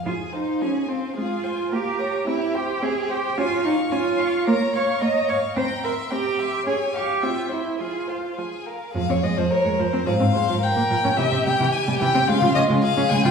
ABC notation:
X:1
M:2/4
L:1/16
Q:1/4=109
K:Fm
V:1 name="Violin"
a2 f2 a2 f2 | f2 a2 f2 b2 | =e2 g2 e2 g2 | a2 d'2 a2 d'2 |
b2 d'2 b2 d'2 | b2 c'2 b2 c'2 | a2 d'2 g2 =e2 | a2 f2 a2 f2 |
f d e c d2 c2 | f4 g4 | =e2 g2 a2 g2 | f2 e2 f2 a g |]
V:2 name="Violin"
A2 c2 A2 c2 | A2 c2 B2 d2 | G2 c2 G2 c2 | d2 f2 d2 f2 |
d2 f2 d2 f2 | g2 =e2 g2 e2 | d2 f2 =e2 c2 | A2 c2 A2 B2 |
A4 B4 | A2 c2 B4 | G8 | F4 A4 |]
V:3 name="Viola"
F,4 F,4 | A,4 B,4 | C4 C4 | D4 D4 |
B,4 B,4 | C4 C4 | D4 C4 | F,4 F,4 |
F, C A, F, z A, F, C | F, C A, F, z B, F, D | =E, C G, E, z G, E, C | A, F D A, z D A, F |]
V:4 name="Cello" clef=bass
F2 E2 D2 C2 | F4 G4 | =E2 G2 A2 G2 | F2 E2 F4 |
B2 d2 e2 d2 | c2 B2 G4 | A2 G2 F2 =E2 | F4 z4 |
F,, F,, F,, F,, z F,, F,, F,, | A,, A,, A,, A,, z B,, B,, B,, | C, C, C, C, z C, C, C, | D, D, D, D, z D, D, D, |]